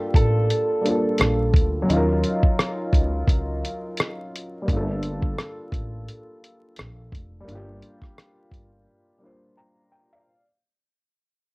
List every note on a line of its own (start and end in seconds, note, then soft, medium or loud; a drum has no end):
0.00 0.77 G3 medium
0.00 0.79 A#3 medium
0.00 0.81 D4 soft
0.00 0.83 F4 medium
0.00 0.85 A4 medium
0.14 0.47 A1 medium
0.14 1.50 A4 medium
0.14 kick medium
0.14 closed hi-hat medium
0.50 closed hi-hat medium
0.81 1.87 G3 soft
0.81 1.88 A#3 soft
0.81 1.89 D4 soft
0.86 1.90 F4 soft
0.86 1.91 A4 medium
0.86 closed hi-hat medium
1.18 1.52 A#1 loud
1.18 cross-stick loud
1.18 closed hi-hat medium
1.54 1.87 D2 medium
1.54 kick medium
1.54 closed hi-hat medium
1.82 4.61 F#3 medium
1.82 4.62 C#4 medium
1.89 2.22 D#2 loud
1.89 4.64 D#4 medium
1.89 4.66 F4 medium
1.89 closed hi-hat medium
1.97 4.68 A#4 medium
2.24 closed hi-hat medium
2.43 kick medium
2.59 cross-stick loud
2.59 closed hi-hat medium
2.93 3.26 C#2 medium
2.93 kick medium
2.93 closed hi-hat medium
3.28 3.61 C#2 loud
3.28 kick medium
3.28 closed hi-hat medium
3.65 closed hi-hat medium
3.97 cross-stick loud
3.97 closed hi-hat medium
4.36 closed hi-hat medium
4.62 7.39 G3 medium
4.62 7.42 A#3 medium
4.68 5.34 G1 loud
4.68 7.44 D4 medium
4.68 kick loud
4.68 closed hi-hat medium
4.73 7.45 F4 medium
4.73 7.47 A4 medium
5.03 closed hi-hat medium
5.22 kick medium
5.39 cross-stick loud
5.39 closed hi-hat medium
5.72 6.05 A1 medium
5.72 kick medium
5.72 closed hi-hat medium
6.08 closed hi-hat medium
6.44 closed hi-hat medium
6.76 7.10 A#1 loud
6.76 cross-stick loud
6.76 closed hi-hat medium
7.12 7.45 F1 medium
7.12 kick medium
7.12 closed hi-hat medium
7.40 9.15 G3 medium
7.40 9.17 A#3 medium
7.48 7.80 G1 loud
7.48 9.18 D4 medium
7.48 9.20 F4 medium
7.48 closed hi-hat medium
7.55 9.22 G4 medium
7.82 closed hi-hat medium
8.02 kick medium
8.02 cross-stick soft
8.18 cross-stick loud
8.18 closed hi-hat medium
8.51 8.84 G1 medium
8.51 kick medium
8.51 closed hi-hat medium
9.19 10.25 G3 medium
9.19 10.26 A#3 medium
9.19 10.26 D4 medium
9.24 10.27 F4 medium
9.24 10.28 C5 medium
9.57 9.90 G5 medium
9.57 9.90 A#5 medium
9.92 10.11 G5 medium
10.13 10.45 D5 medium
10.13 10.45 F5 medium